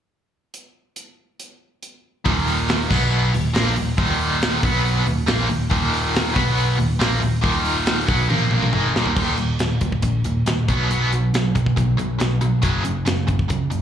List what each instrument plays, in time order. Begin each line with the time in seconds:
0.54 closed hi-hat
0.96 closed hi-hat
1.40 closed hi-hat
1.83 closed hi-hat
2.25 picked electric bass D#1, overdriven electric guitar D#2 A#2 D#3, kick, open hi-hat
2.48 open hi-hat
2.69 snare, open hi-hat
2.89 picked electric bass B1, overdriven electric guitar B2 F#3 B3, kick, snare, crash
3.33 picked electric bass D#1, overdriven electric guitar D#2 A#2, open hi-hat
3.54 picked electric bass A#1, overdriven electric guitar A#2 F3 A#3, snare, open hi-hat
3.76 picked electric bass D#1, overdriven electric guitar D#2 A#2, open hi-hat
3.98 picked electric bass D#1, overdriven electric guitar D#2 A#2 D#3, kick, open hi-hat
4.20 open hi-hat
4.42 snare, open hi-hat
4.63 picked electric bass B1, overdriven electric guitar B2 F#3 B3, kick, open hi-hat
4.85 open hi-hat
5.06 picked electric bass D#1, overdriven electric guitar D#2 A#2, open hi-hat
5.27 picked electric bass A#1, overdriven electric guitar A#2 F3 A#3, snare, open hi-hat
5.48 picked electric bass D#1, overdriven electric guitar D#2 A#2, open hi-hat
5.70 picked electric bass D#1, overdriven electric guitar D#2 A#2 D#3, kick, open hi-hat
5.94 open hi-hat
6.15 snare, open hi-hat
6.34 picked electric bass B1, overdriven electric guitar B2 F#3 B3, kick, open hi-hat
6.38 snare
6.57 open hi-hat
6.76 picked electric bass D#1, overdriven electric guitar D#2 A#2, open hi-hat
6.99 picked electric bass A#1, overdriven electric guitar A#2 F3 A#3, snare, open hi-hat
7.20 picked electric bass D#1, overdriven electric guitar D#2 A#2, open hi-hat
7.41 picked electric bass D#1, overdriven electric guitar D#2 A#2 D#3, kick, open hi-hat
7.65 open hi-hat
7.86 snare, open hi-hat
8.06 picked electric bass B1, overdriven electric guitar B2 F#3 B3, kick
8.29 picked electric bass A#1, overdriven electric guitar A#2 F3 A#3, high tom
8.51 mid tom
8.62 mid tom
8.73 picked electric bass G#1, overdriven electric guitar G#2 D#3 G#3, mid tom
8.95 picked electric bass D#1, overdriven electric guitar D#2 A#2 D#3, snare
9.06 floor tom
9.16 picked electric bass D#1, overdriven electric guitar D#2 A#2 D#3, kick, crash
9.37 picked electric bass D#1, overdriven electric guitar D#2 A#2, closed hi-hat
9.59 picked electric bass D#1, overdriven electric guitar D#2 A#2, snare, closed hi-hat
9.81 picked electric bass D#1, overdriven electric guitar D#2 A#2, kick, closed hi-hat
9.92 kick
10.02 picked electric bass A#1, overdriven electric guitar D#2 A#2, kick, closed hi-hat
10.24 picked electric bass D#1, overdriven electric guitar D#2 A#2, closed hi-hat
10.46 picked electric bass D#1, overdriven electric guitar D#2 A#2, snare, closed hi-hat
10.68 picked electric bass B1, overdriven electric guitar B2 F#3 B3, kick, closed hi-hat
10.90 picked electric bass B1, overdriven electric guitar B2 F#3 B3, closed hi-hat
11.12 overdriven electric guitar B2 F#3, closed hi-hat
11.34 picked electric bass B1, overdriven electric guitar B2 F#3, snare, closed hi-hat
11.55 picked electric bass B1, overdriven electric guitar B2 F#3, kick, closed hi-hat
11.66 kick
11.76 picked electric bass B1, overdriven electric guitar B2 F#3, kick, closed hi-hat
11.97 picked electric bass B1, overdriven electric guitar B2 F#3, closed hi-hat
12.19 picked electric bass B1, overdriven electric guitar B2 F#3, snare, closed hi-hat
12.41 picked electric bass B1, overdriven electric guitar B2 F#3, closed hi-hat
12.62 picked electric bass F#1, overdriven electric guitar F#2 C#3 F#3, kick, closed hi-hat
12.84 picked electric bass F#1, overdriven electric guitar F#2 C#3, closed hi-hat
13.05 picked electric bass F#1, overdriven electric guitar F#2 C#3, snare, closed hi-hat
13.27 picked electric bass F#1, overdriven electric guitar F#2 C#3, kick, closed hi-hat
13.39 kick
13.49 picked electric bass C#2, overdriven electric guitar F#2 C#3, kick, closed hi-hat
13.70 picked electric bass F#1, overdriven electric guitar F#2 C#3, closed hi-hat